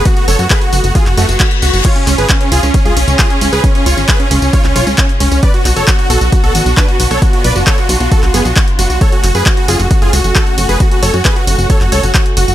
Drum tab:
CC |----------------|x---------------|----------------|----------------|
RD |----------------|x-x-x-x-x-x-x-x-|x-x-x-x-x-x-x-x-|x-x-x-x-x-x-x-x-|
HH |xxoxxxoxxxoxxxox|xxoxxxoxxxoxxxox|xxoxxxoxxxoxxxox|xxoxxxoxxxoxxxox|
TB |x-xxx-xxx-xx--xx|x-xxx-xxx-xxx-xx|x-xxx-xxx-xxx-xx|x-xxx-xxx-xxx-xx|
CP |----x----x--x---|--x-x-------x---|----x----x--x---|--x-x-------x---|
BD |o---o---o---o---|o---o---o---o---|o---o---o---o---|o---o---o---o---|

CC |----------------|----------------|----------------|
RD |x-x-x-x-x-x-x-x-|x-x-x-x-x-x-x-x-|x-x-x-x-x-x-x-x-|
HH |xxoxxxoxxxoxxxox|xxoxxxoxxxoxxxox|xxoxxxoxxxoxxxox|
TB |x-xx--xxx-xxx-xx|x-xxx-xxx-xxx-xx|x-xxx-xxx-xxx-xx|
CP |----x----x--x---|--x-x-------x---|----x----x--x---|
BD |o---o---o---o---|o---o---o---o---|o---o---o---o---|